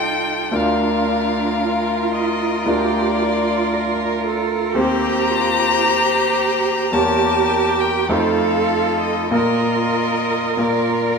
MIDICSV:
0, 0, Header, 1, 6, 480
1, 0, Start_track
1, 0, Key_signature, -2, "major"
1, 0, Tempo, 1075269
1, 244, Time_signature, 4, 2, 24, 8
1, 1201, Tempo, 1052632
1, 2641, Tempo, 1094891
1, 3121, Tempo, 1167315
1, 3601, Tempo, 1237113
1, 4794, End_track
2, 0, Start_track
2, 0, Title_t, "Violin"
2, 0, Program_c, 0, 40
2, 0, Note_on_c, 0, 79, 77
2, 248, Note_on_c, 0, 77, 56
2, 255, Note_off_c, 0, 79, 0
2, 955, Note_off_c, 0, 77, 0
2, 958, Note_on_c, 0, 75, 54
2, 1203, Note_on_c, 0, 74, 67
2, 1210, Note_off_c, 0, 75, 0
2, 1921, Note_off_c, 0, 74, 0
2, 2146, Note_on_c, 0, 82, 89
2, 3117, Note_on_c, 0, 81, 72
2, 3124, Note_off_c, 0, 82, 0
2, 3476, Note_on_c, 0, 79, 62
2, 3482, Note_off_c, 0, 81, 0
2, 3598, Note_on_c, 0, 77, 60
2, 3604, Note_off_c, 0, 79, 0
2, 3943, Note_off_c, 0, 77, 0
2, 3946, Note_on_c, 0, 75, 50
2, 4070, Note_off_c, 0, 75, 0
2, 4074, Note_on_c, 0, 75, 64
2, 4566, Note_on_c, 0, 74, 48
2, 4572, Note_off_c, 0, 75, 0
2, 4794, Note_off_c, 0, 74, 0
2, 4794, End_track
3, 0, Start_track
3, 0, Title_t, "Violin"
3, 0, Program_c, 1, 40
3, 0, Note_on_c, 1, 69, 44
3, 243, Note_on_c, 1, 70, 42
3, 250, Note_off_c, 1, 69, 0
3, 2149, Note_off_c, 1, 70, 0
3, 2152, Note_on_c, 1, 72, 57
3, 3119, Note_on_c, 1, 70, 55
3, 3125, Note_off_c, 1, 72, 0
3, 3601, Note_on_c, 1, 69, 56
3, 3607, Note_off_c, 1, 70, 0
3, 4075, Note_off_c, 1, 69, 0
3, 4078, Note_on_c, 1, 70, 53
3, 4554, Note_off_c, 1, 70, 0
3, 4559, Note_on_c, 1, 70, 52
3, 4794, Note_off_c, 1, 70, 0
3, 4794, End_track
4, 0, Start_track
4, 0, Title_t, "Cello"
4, 0, Program_c, 2, 42
4, 0, Note_on_c, 2, 63, 52
4, 242, Note_off_c, 2, 63, 0
4, 245, Note_on_c, 2, 62, 46
4, 731, Note_on_c, 2, 65, 44
4, 738, Note_off_c, 2, 62, 0
4, 1205, Note_on_c, 2, 67, 53
4, 1211, Note_off_c, 2, 65, 0
4, 1441, Note_on_c, 2, 65, 50
4, 1448, Note_off_c, 2, 67, 0
4, 1676, Note_on_c, 2, 70, 49
4, 1683, Note_off_c, 2, 65, 0
4, 1917, Note_off_c, 2, 70, 0
4, 1919, Note_on_c, 2, 69, 49
4, 2161, Note_on_c, 2, 67, 57
4, 2168, Note_off_c, 2, 69, 0
4, 2392, Note_on_c, 2, 65, 50
4, 2399, Note_off_c, 2, 67, 0
4, 2639, Note_on_c, 2, 67, 53
4, 2646, Note_off_c, 2, 65, 0
4, 3120, Note_off_c, 2, 67, 0
4, 3123, Note_on_c, 2, 67, 64
4, 3600, Note_on_c, 2, 69, 56
4, 3606, Note_off_c, 2, 67, 0
4, 4072, Note_off_c, 2, 69, 0
4, 4075, Note_on_c, 2, 70, 52
4, 4794, Note_off_c, 2, 70, 0
4, 4794, End_track
5, 0, Start_track
5, 0, Title_t, "Viola"
5, 0, Program_c, 3, 41
5, 0, Note_on_c, 3, 65, 44
5, 230, Note_off_c, 3, 65, 0
5, 245, Note_on_c, 3, 65, 49
5, 2140, Note_off_c, 3, 65, 0
5, 2153, Note_on_c, 3, 67, 60
5, 3102, Note_off_c, 3, 67, 0
5, 3119, Note_on_c, 3, 67, 57
5, 3600, Note_on_c, 3, 65, 46
5, 3606, Note_off_c, 3, 67, 0
5, 4076, Note_off_c, 3, 65, 0
5, 4079, Note_on_c, 3, 65, 46
5, 4555, Note_off_c, 3, 65, 0
5, 4568, Note_on_c, 3, 65, 47
5, 4794, Note_off_c, 3, 65, 0
5, 4794, End_track
6, 0, Start_track
6, 0, Title_t, "Grand piano"
6, 0, Program_c, 4, 0
6, 0, Control_c, 4, 64, 127
6, 0, Note_on_c, 4, 36, 33
6, 0, Note_on_c, 4, 63, 31
6, 0, Note_on_c, 4, 65, 32
6, 0, Note_on_c, 4, 69, 30
6, 218, Note_off_c, 4, 36, 0
6, 219, Note_off_c, 4, 63, 0
6, 221, Note_off_c, 4, 65, 0
6, 222, Note_off_c, 4, 69, 0
6, 230, Note_on_c, 4, 38, 41
6, 232, Note_on_c, 4, 62, 35
6, 234, Note_on_c, 4, 65, 35
6, 235, Note_on_c, 4, 70, 34
6, 253, Control_c, 4, 64, 0
6, 321, Control_c, 4, 64, 127
6, 1177, Note_off_c, 4, 38, 0
6, 1178, Note_off_c, 4, 62, 0
6, 1179, Note_off_c, 4, 65, 0
6, 1179, Note_off_c, 4, 70, 0
6, 1185, Note_on_c, 4, 38, 36
6, 1189, Note_on_c, 4, 62, 33
6, 1191, Note_on_c, 4, 65, 32
6, 1192, Note_on_c, 4, 70, 33
6, 2131, Note_off_c, 4, 38, 0
6, 2133, Note_off_c, 4, 62, 0
6, 2134, Note_off_c, 4, 65, 0
6, 2135, Note_off_c, 4, 70, 0
6, 2138, Note_on_c, 4, 39, 49
6, 2144, Note_on_c, 4, 60, 42
6, 2146, Note_on_c, 4, 72, 42
6, 2147, Note_on_c, 4, 67, 39
6, 2165, Control_c, 4, 64, 0
6, 2225, Control_c, 4, 64, 127
6, 3094, Note_off_c, 4, 39, 0
6, 3097, Note_off_c, 4, 60, 0
6, 3098, Note_off_c, 4, 72, 0
6, 3099, Note_off_c, 4, 67, 0
6, 3110, Note_on_c, 4, 40, 44
6, 3114, Note_on_c, 4, 58, 35
6, 3115, Note_on_c, 4, 67, 37
6, 3117, Note_on_c, 4, 73, 37
6, 3128, Control_c, 4, 64, 0
6, 3190, Control_c, 4, 64, 127
6, 3581, Note_off_c, 4, 40, 0
6, 3584, Note_off_c, 4, 58, 0
6, 3584, Note_off_c, 4, 67, 0
6, 3585, Note_off_c, 4, 73, 0
6, 3592, Note_on_c, 4, 57, 36
6, 3593, Note_on_c, 4, 41, 48
6, 3595, Note_on_c, 4, 63, 37
6, 3596, Note_on_c, 4, 72, 35
6, 3609, Control_c, 4, 64, 0
6, 3688, Control_c, 4, 64, 127
6, 4058, Note_off_c, 4, 57, 0
6, 4059, Note_off_c, 4, 41, 0
6, 4060, Note_off_c, 4, 63, 0
6, 4060, Note_off_c, 4, 72, 0
6, 4066, Note_on_c, 4, 46, 44
6, 4068, Note_on_c, 4, 58, 35
6, 4069, Note_on_c, 4, 65, 37
6, 4072, Note_on_c, 4, 70, 36
6, 4085, Control_c, 4, 64, 0
6, 4153, Control_c, 4, 64, 127
6, 4543, Note_off_c, 4, 46, 0
6, 4544, Note_off_c, 4, 58, 0
6, 4545, Note_off_c, 4, 65, 0
6, 4546, Note_off_c, 4, 70, 0
6, 4555, Note_on_c, 4, 46, 35
6, 4559, Note_on_c, 4, 58, 35
6, 4560, Note_on_c, 4, 70, 33
6, 4562, Note_on_c, 4, 65, 33
6, 4794, Note_off_c, 4, 46, 0
6, 4794, Note_off_c, 4, 58, 0
6, 4794, Note_off_c, 4, 65, 0
6, 4794, Note_off_c, 4, 70, 0
6, 4794, End_track
0, 0, End_of_file